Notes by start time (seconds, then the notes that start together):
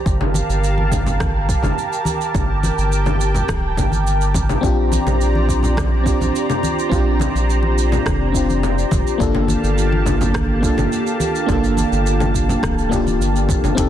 Already playing: G4
0.06 G1 A#4 F5 A5, kick, shaker
0.21 low conga
0.34 high conga, shaker
0.49 G1, shaker
0.64 shaker
0.78 high conga
0.92 kick, low conga, shaker
1.06 low conga, shaker
1.20 kick, cross-stick, high conga, low conga, shaker
1.49 kick, shaker
1.62 G1, high conga, low conga, shaker
1.78 shaker
1.93 shaker
2.05 high conga, shaker
2.21 shaker
2.35 G1 G5, kick, low conga, shaker
2.63 high conga, shaker
2.78 G1, shaker
2.92 shaker
3.06 high conga, low conga, shaker
3.21 shaker
3.35 low conga, shaker
3.48 D1, kick, cross-stick, high conga, shaker
3.77 G1, kick, low conga, shaker
3.92 high conga, shaker
4.07 shaker
4.21 shaker
4.34 kick, high conga, low conga, shaker
4.49 low conga, shaker
4.61 A#1 C4 D4 F4 C5 D5 A#5, kick, shaker
4.66 G4
4.92 high conga, shaker
5.06 A#1, low conga, shaker
5.21 shaker
5.35 high conga
5.49 kick, shaker
5.63 low conga, shaker
5.77 kick, cross-stick, high conga, low conga, shaker
6.04 C4 D4 F4, kick, shaker
6.08 G4
6.20 A#1, high conga, low conga, shaker
6.36 shaker
6.50 low conga, shaker
6.63 high conga, shaker
6.79 shaker
6.89 A#1 C4 D4 F4, kick, shaker
6.94 G4
7.20 high conga, low conga, shaker
7.35 A#1, shaker
7.50 shaker
7.63 high conga
7.78 shaker
7.92 low conga, shaker
8.06 F1, kick, cross-stick, high conga, shaker
8.32 C4 D4 F4, kick, shaker
8.37 G4
8.49 high conga, shaker
8.63 low conga, shaker
8.78 shaker
8.91 F1, kick, high conga, low conga, shaker
9.07 shaker
9.18 G1 A#3 D4 F4 G4 F5 A5, kick, shaker
9.23 A4
9.35 low conga
9.48 high conga, shaker
9.63 G1, shaker
9.78 shaker
9.92 high conga
10.06 kick, low conga, shaker
10.21 low conga, shaker
10.34 kick, cross-stick, high conga, low conga, shaker
10.61 A#3 D4 F4, kick, shaker
10.66 A4
10.77 G1, high conga, low conga, shaker
10.92 shaker
11.07 shaker
11.20 high conga, shaker
11.35 shaker
11.46 G1 A#3 D4 F4, kick, low conga, shaker
11.51 A4
11.64 shaker
11.77 high conga, shaker
11.92 G1, shaker
12.06 shaker
12.20 high conga, low conga, shaker
12.34 kick, shaker
12.49 low conga, shaker
12.63 D1, kick, cross-stick, high conga, shaker
12.78 shaker
12.89 A#3 D4 F4, kick, low conga, shaker
12.94 G4
13.06 high conga, shaker
13.20 G1, shaker
13.36 shaker
13.49 kick, high conga, low conga, shaker
13.63 G1, low conga, shaker
13.75 F1 C4 D#4 G4 D#5 F5 A5, kick, closed hi-hat, shaker
13.80 A4